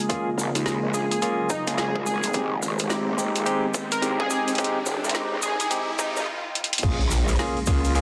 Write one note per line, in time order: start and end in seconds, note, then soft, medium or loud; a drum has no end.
0.00 2.30 C#3 medium
0.00 2.30 G#3 medium
0.00 2.30 A#3 medium
0.00 2.30 F4 medium
0.00 6.27 F4 medium
0.00 6.27 A#4 medium
0.00 6.27 D#5 medium
0.00 2.34 G#5 medium
0.00 riser medium
0.09 0.29 A#3 loud
0.09 0.29 C#4 medium
0.09 0.29 F4 medium
0.09 0.29 G#4 loud
0.09 kick loud
0.09 closed hi-hat medium
0.09 cabasa soft
0.38 0.53 G#1 loud
0.38 cross-stick soft
0.38 cabasa medium
0.55 0.81 D#2 medium
0.55 cross-stick medium
0.55 closed hi-hat medium
0.55 cabasa medium
0.66 0.85 A#3 medium
0.66 0.85 C#4 medium
0.66 0.85 F4 medium
0.66 0.85 G#4 medium
0.66 snare loud
0.66 closed hi-hat medium
0.66 cabasa soft
0.83 0.92 A#1 loud
0.94 1.09 A#1 loud
0.94 1.19 A#3 medium
0.94 1.19 C#4 medium
0.94 1.19 F4 medium
0.94 1.19 G#4 medium
0.94 1.05 G#4 medium
0.94 cabasa loud
1.11 1.18 G#4 medium
1.11 closed hi-hat medium
1.11 cabasa soft
1.22 1.49 A#3 loud
1.22 1.49 C#4 medium
1.22 1.49 F4 medium
1.22 1.49 G#4 loud
1.22 closed hi-hat medium
1.22 cabasa soft
1.49 1.67 D#4 medium
1.49 kick loud
1.49 cabasa medium
1.67 2.04 A#1 loud
1.67 1.93 A#3 medium
1.67 1.93 C#4 medium
1.67 1.93 F4 medium
1.67 1.93 G#4 loud
1.67 closed hi-hat medium
1.67 cabasa medium
1.77 1.95 G#4 loud
1.77 snare loud
1.77 closed hi-hat medium
1.77 cabasa soft
1.96 kick medium
2.06 2.33 G#1 loud
2.06 2.41 G#4 medium
2.06 cabasa medium
2.23 cross-stick soft
2.23 closed hi-hat medium
2.23 cabasa medium
2.33 2.61 G#1 medium
2.33 6.23 D#3 medium
2.33 2.53 G#3 medium
2.33 6.23 G#3 medium
2.33 6.23 C4 medium
2.33 2.53 C4 medium
2.33 2.53 D#4 medium
2.33 2.53 G4 medium
2.33 6.23 G4 medium
2.33 kick loud
2.33 closed hi-hat medium
2.33 cabasa soft
2.62 3.05 G#1 loud
2.62 cross-stick soft
2.62 cabasa medium
2.79 cross-stick medium
2.79 closed hi-hat medium
2.79 cabasa medium
2.89 3.09 G#3 medium
2.89 3.09 C4 medium
2.89 3.09 D#4 medium
2.89 3.09 G4 loud
2.89 snare loud
2.89 closed hi-hat medium
2.89 cabasa soft
3.07 3.45 G#1 loud
3.18 3.44 G#3 medium
3.18 3.44 C4 medium
3.18 3.44 D#4 medium
3.18 3.44 G4 medium
3.18 cabasa medium
3.36 closed hi-hat medium
3.36 cabasa soft
3.46 3.65 G#3 medium
3.46 3.65 C4 medium
3.46 3.65 D#4 medium
3.46 3.65 G4 medium
3.46 6.27 G5 medium
3.46 closed hi-hat medium
3.46 cabasa soft
3.74 kick loud
3.74 cabasa medium
3.92 4.03 A#4 medium
3.92 closed hi-hat medium
3.92 cabasa medium
4.02 4.29 C2 loud
4.02 4.22 G#3 medium
4.02 4.22 C4 medium
4.02 4.21 D#4 medium
4.02 4.22 G4 loud
4.02 cross-stick medium
4.02 closed hi-hat medium
4.02 cabasa soft
4.20 4.27 G#4 medium
4.20 kick loud
4.30 4.56 G#3 medium
4.30 4.56 C4 medium
4.30 4.56 D#4 medium
4.30 4.56 G4 loud
4.30 4.42 G#4 medium
4.30 cabasa loud
4.48 closed hi-hat soft
4.48 cabasa medium
4.55 4.78 C4 medium
4.55 closed hi-hat soft
4.58 4.78 G#3 medium
4.58 4.78 D#4 medium
4.58 4.78 G4 loud
4.58 kick loud
4.58 closed hi-hat medium
4.58 cabasa soft
4.64 closed hi-hat medium
4.86 5.01 D#1 loud
4.86 cross-stick soft
4.86 cabasa loud
5.03 5.29 C2 loud
5.03 cross-stick medium
5.03 cabasa medium
5.09 closed hi-hat medium
5.14 5.34 G#3 medium
5.14 5.34 C4 medium
5.14 5.34 D#4 medium
5.14 5.34 G4 medium
5.14 snare loud
5.14 cabasa soft
5.31 5.41 G#1 loud
5.42 5.57 G#1 medium
5.42 5.54 G#4 medium
5.42 cabasa loud
5.60 5.67 G#4 medium
5.60 closed hi-hat medium
5.60 cabasa medium
5.70 5.90 G#3 medium
5.70 5.90 C4 medium
5.70 5.90 D#4 medium
5.70 5.90 G4 loud
5.70 closed hi-hat medium
5.70 cabasa soft
5.99 6.18 G#3 medium
5.99 6.18 C4 medium
5.99 6.18 D#4 medium
5.99 6.10 D#4 medium
5.99 6.18 G4 loud
5.99 kick loud
5.99 cabasa loud
6.16 6.27 G#1 loud
6.16 6.23 D#4 medium
6.16 cabasa medium
6.55 closed hi-hat medium
6.64 closed hi-hat medium
6.73 closed hi-hat medium
6.78 closed hi-hat medium
6.83 7.38 A#1 loud
6.83 8.01 C#3 medium
6.83 8.01 G#3 medium
6.83 7.02 A#3 medium
6.83 8.01 A#3 medium
6.83 7.02 C#4 medium
6.83 7.02 F4 medium
6.83 8.01 F4 medium
6.83 7.02 G#4 loud
6.83 kick loud
6.83 crash loud
6.83 impact medium
6.83 cabasa soft
7.01 open hi-hat soft
7.11 cross-stick soft
7.11 open hi-hat medium
7.11 cabasa loud
7.28 cross-stick medium
7.28 open hi-hat soft
7.28 cabasa soft
7.36 7.58 A#3 loud
7.36 7.58 C#4 medium
7.36 7.58 F4 medium
7.36 7.58 G#4 loud
7.36 snare loud
7.36 open hi-hat soft
7.39 open hi-hat soft
7.39 cabasa soft
7.57 open hi-hat soft
7.66 8.01 C#2 loud
7.66 7.93 A#3 medium
7.66 7.93 C#4 medium
7.66 7.93 F4 medium
7.66 7.93 G#4 loud
7.66 kick medium
7.66 open hi-hat medium
7.66 cabasa medium
7.84 open hi-hat soft
7.84 cabasa medium
7.95 8.01 A#3 loud
7.95 8.01 C#4 medium
7.95 8.01 F4 medium
7.95 8.01 G#4 loud
7.95 open hi-hat soft
7.95 cabasa soft